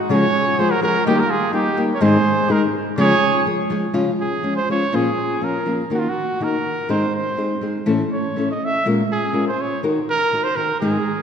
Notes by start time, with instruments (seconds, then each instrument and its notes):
0.09 nylon-string guitar C#3 F3 G#3 F4 G#4, trumpet G#4 C#5
0.59 nylon-string guitar F3 G#3 F4 G#4, trumpet G#4 C5
0.70 trumpet F#4 A#4
0.81 nylon-string guitar F3 G#3 F4 G#4, trumpet F#4 A#4
1.04 nylon-string guitar D#3 G3 A#3 D#4 G4, trumpet D#4 G4
1.17 trumpet G4 A#4
1.26 trumpet F4
1.30 trumpet G#4
1.51 nylon-string guitar G3 A#3 D#4 G4, trumpet D#4 G4
1.77 nylon-string guitar G3 A#3 D#4 G4
1.95 trumpet A#4 C#5
2.01 nylon-string guitar G#2 D#3 G#3 C4 D#4 G#4, trumpet G#4 C5
2.48 nylon-string guitar G#3 C4 D#4 G#4, trumpet D#4 A#4
2.98 nylon-string guitar C#3 F3 G#3 F4 G#4, trumpet G#4 C#5
3.45 nylon-string guitar F3 G#3 F4 G#4
3.70 nylon-string guitar F3 G#3 F4 G#4
3.94 nylon-string guitar C#3 F3 G#3 C#4 F4
4.21 trumpet G#4
4.43 nylon-string guitar F3 G#3 C#4 F4
4.56 trumpet C5
4.69 nylon-string guitar F3 G#3 C#4 F4, trumpet C#5
4.92 nylon-string guitar A#2 F3 A#3 C#4 F4, trumpet G#4
5.41 nylon-string guitar F3 A#3 C#4 F4, trumpet A#4
5.66 nylon-string guitar F3 A#3 C#4 F4
5.90 nylon-string guitar D#3 A#3 D#4 F#4
5.95 trumpet F#4
5.99 trumpet F4
6.09 trumpet F#4
6.40 nylon-string guitar D#3 A#3 D#4 F#4, trumpet A#4
6.89 nylon-string guitar G#2 D#3 G#3 C4 D#4 G#4, trumpet C5
7.15 trumpet C5
7.37 nylon-string guitar G#3 C4 D#4 G#4
7.61 nylon-string guitar G#3 C4 D#4 G#4
7.86 nylon-string guitar A2 E3 A3 C#4 E4 A4
8.13 trumpet C#5
8.36 nylon-string guitar A3 C#4 E4 A4
8.51 trumpet D#5
8.65 trumpet E5
8.85 nylon-string guitar A#2 G#3 C#4 F4 A#4
9.12 trumpet G#4
9.33 nylon-string guitar G#3 C#4 F4 A#4
9.48 trumpet C5
9.61 trumpet C#5
9.83 nylon-string guitar D#3 D#4 F#4 A#4
10.09 trumpet A#4
10.32 nylon-string guitar D#3 D#4 F#4 A#4
10.44 trumpet C5
10.56 nylon-string guitar D#3 D#4 F#4 A#4, trumpet A#4
10.81 nylon-string guitar G#2 D#3 G#3 C4 D#4 G#4, trumpet G#4